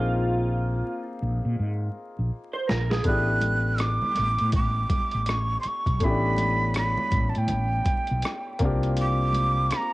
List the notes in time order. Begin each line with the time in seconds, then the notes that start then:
Already playing: A#1 A#3 C4 D#4 F4 G#4
1.22 A#1
1.45 A#2
1.59 G#2
2.19 A#1
2.53 C5
2.67 A#1 A#4, snare
2.90 G#4, snare
3.03 A1 A3 B3 D4 F#6, kick, closed hi-hat, muted conga
3.08 E4 G4
3.41 closed hi-hat, muted conga, high conga
3.78 D6, cross-stick, closed hi-hat
4.02 high conga, low conga
4.15 A1, cross-stick, closed hi-hat, muted conga, high conga
4.38 A2, closed hi-hat
4.52 A1 D6, kick, closed hi-hat, muted conga, high conga, low conga
4.90 kick, closed hi-hat, muted conga, high conga
5.11 A1, closed hi-hat
5.26 C#6, cross-stick, closed hi-hat, muted conga
5.60 C6, closed hi-hat
5.65 C#6, muted fretless electric bass stroke, muted conga
5.86 B1, kick, closed hi-hat
6.00 A1 A3 B3 C#4, kick, closed hi-hat, muted conga
6.04 E4 G4 B5
6.09 D4
6.36 closed hi-hat, muted conga, high conga
6.74 B5, cross-stick, closed hi-hat
6.97 high conga, low conga
7.11 A1, kick, closed hi-hat, muted conga, high conga
7.29 A5
7.35 A2 G5, closed hi-hat
7.48 A1, closed hi-hat, muted conga, high conga, low conga
7.85 kick, closed hi-hat, high conga
8.07 B1, closed hi-hat
8.22 cross-stick, closed hi-hat, muted conga
8.59 C2 A#3 C4 D4, kick, closed hi-hat
8.64 F4 G4
8.83 closed hi-hat
8.97 closed hi-hat, muted conga
9.01 D6
9.33 closed hi-hat, muted conga, high conga
9.71 cross-stick, closed hi-hat, muted conga
9.77 A#5